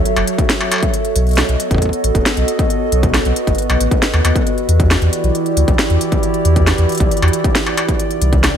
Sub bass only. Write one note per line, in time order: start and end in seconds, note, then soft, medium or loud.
0.16 0.24 F#1 medium
1.16 1.43 B1 medium
1.49 1.56 B1 medium
1.71 1.78 F#1 loud
2.04 2.11 A1 medium
2.15 2.22 F#1 medium
2.37 2.44 B1 medium
2.92 3.19 B1 medium
3.25 3.33 B1 medium
3.47 3.55 F#1 medium
3.69 3.77 B1 medium
3.80 3.88 A1 medium
4.14 4.21 D#2 loud
4.25 4.32 D#2 medium
4.69 4.96 E2 loud
5.02 5.09 E2 medium
5.24 5.31 B1 loud
5.57 5.64 D2 medium
5.68 5.75 B1 medium
5.90 5.97 E2 medium
6.45 6.72 E2 medium
6.78 6.86 E2 medium
7.00 7.08 B1 medium
7.22 7.30 E2 medium
8.22 8.49 C2 medium